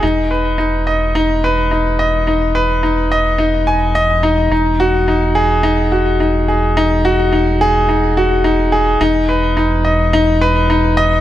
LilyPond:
<<
  \new Staff \with { instrumentName = "Grand piano" } { \time 4/4 \key gis \phrygian \tempo 4 = 107 dis'8 b'8 dis'8 dis''8 dis'8 b'8 dis'8 dis''8 | dis'8 b'8 dis'8 dis''8 dis'8 gis''8 dis''8 dis'8 | dis'8 fis'8 dis'8 gis'8 dis'8 fis'8 dis'8 gis'8 | dis'8 fis'8 dis'8 gis'8 dis'8 fis'8 dis'8 gis'8 |
dis'8 b'8 dis'8 dis''8 dis'8 b'8 dis'8 dis''8 | }
  \new Staff \with { instrumentName = "Analog synth bass" } { \clef bass \time 4/4 \key gis \phrygian e,,1~ | e,,1 | e,,1~ | e,,1 |
e,,1 | }
>>